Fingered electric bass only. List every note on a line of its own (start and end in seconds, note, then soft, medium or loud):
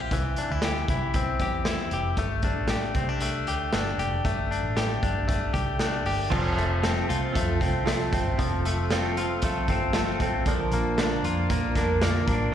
0.00 0.11 A#1 medium
0.11 0.44 C2 loud
0.50 0.83 D2 medium
0.89 1.32 C2 medium
1.40 1.84 E2 medium
1.91 2.14 F1 medium
2.17 2.56 G1 medium
2.56 2.89 A1 medium
2.95 3.48 C2 medium
3.48 3.69 D2 medium
3.73 3.95 G1 medium
3.98 4.20 F1 medium
4.25 4.58 G1 medium
4.63 4.96 A1 medium
5.03 5.47 G1 medium
5.54 5.98 C2 medium
6.05 6.27 G1 medium
6.32 6.54 F1 medium
6.57 7.01 F1 medium
7.10 7.32 C2 medium
7.36 7.58 F2 medium
7.61 8.14 C2 medium
8.13 8.35 G1 medium
8.39 9.65 F1 loud
9.68 10.20 G1 medium
10.20 10.42 A1 medium
10.46 10.68 A#1 loud
10.72 11.16 A#1 medium
11.23 11.46 F2 medium
11.50 11.72 A#2 loud
11.76 12.20 F2 medium
12.28 12.50 A1 medium